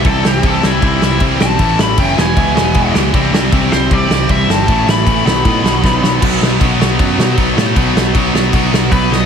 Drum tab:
CC |x-x-x-x-|x-x-x-x-|x-x-x-x-|x-x-x---|
SD |-o-o-o-o|-o-o-o-o|-o-o-o-o|-o-o-ooo|
BD |o-o-o-o-|o-o-o-o-|o-o-o-o-|o-o-o-o-|

CC |x-x-x-x-|x-x-x-x-|
SD |-o-o-o-o|-o-o-o-o|
BD |o-o-o-o-|o-o-o-o-|